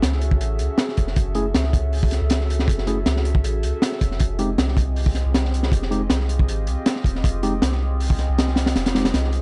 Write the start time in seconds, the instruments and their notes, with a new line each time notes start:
0.03 sub bass C#2, snare, closed hi-hat
0.12 snare
0.22 closed hi-hat
0.31 ambient pad C#4 F#4 G#4 A4 E5, kick
0.40 sub bass A1, closed hi-hat
0.59 sub bass C#2, closed hi-hat
0.78 snare, closed hi-hat
0.89 snare
0.97 sub bass E1, kick, closed hi-hat
1.07 sub bass F#1, snare
1.16 sub bass F#1, kick, closed hi-hat
1.35 tine electric piano A3 C#4 E4 G#4, closed hi-hat
1.54 sub bass C#2, snare, closed hi-hat
1.64 snare
1.73 kick, closed hi-hat
1.83 ambient pad C#4 F#4 G#4 A4 E5
1.93 open hi-hat
2.03 kick
2.11 snare, closed hi-hat
2.21 sub bass C#2
2.30 snare, closed hi-hat
2.41 snare
2.50 closed hi-hat
2.59 snare
2.68 sub bass F#1, kick, closed hi-hat
2.78 snare
2.87 tine electric piano A3 C#4 E4 G#4, closed hi-hat
3.06 sub bass C#2, snare, closed hi-hat
3.17 snare
3.25 closed hi-hat
3.35 ambient pad C#4 F#4 G#4 A4 E5, kick
3.44 sub bass A1, closed hi-hat
3.63 sub bass C#2, closed hi-hat
3.82 snare, closed hi-hat
3.92 snare
4.01 sub bass E1, kick, closed hi-hat
4.11 sub bass F#1, snare
4.19 sub bass F1, kick, closed hi-hat
4.39 tine electric piano G#3 C4 D#4 G4, closed hi-hat
4.58 sub bass C2, snare, closed hi-hat
4.68 snare
4.77 kick, closed hi-hat
4.87 ambient pad C4 F4 G4 G#4 D#5
4.96 open hi-hat
5.06 kick
5.15 snare, closed hi-hat
5.25 sub bass C2
5.34 snare, closed hi-hat
5.45 snare
5.54 closed hi-hat
5.63 snare
5.72 sub bass F1, kick, closed hi-hat
5.82 snare
5.91 tine electric piano G#3 C4 D#4 G4, closed hi-hat
6.10 sub bass C2, snare, closed hi-hat
6.20 snare
6.29 closed hi-hat
6.39 ambient pad C4 F4 G4 G#4 D#5, kick
6.48 sub bass G#1, closed hi-hat
6.67 sub bass C2, closed hi-hat
6.86 snare, closed hi-hat
6.96 snare
7.04 sub bass D#1, kick, closed hi-hat
7.15 sub bass F1, snare
7.24 sub bass F1, kick, closed hi-hat
7.43 tine electric piano G#3 C4 D#4 G4, closed hi-hat
7.62 sub bass C2, snare, closed hi-hat
7.72 snare
7.91 ambient pad C4 F4 G4 G#4 D#5
8.00 open hi-hat
8.10 kick
8.19 snare, closed hi-hat
8.29 sub bass C2
8.38 snare, closed hi-hat
8.48 snare
8.56 snare, closed hi-hat
8.66 snare, closed hi-hat
8.75 sub bass F1, snare, closed hi-hat
8.86 snare, closed hi-hat
8.95 tine electric piano G#3 C4 D#4 G4, snare, closed hi-hat
9.05 snare, closed hi-hat
9.14 sub bass C2, snare, closed hi-hat
9.24 snare
9.33 closed hi-hat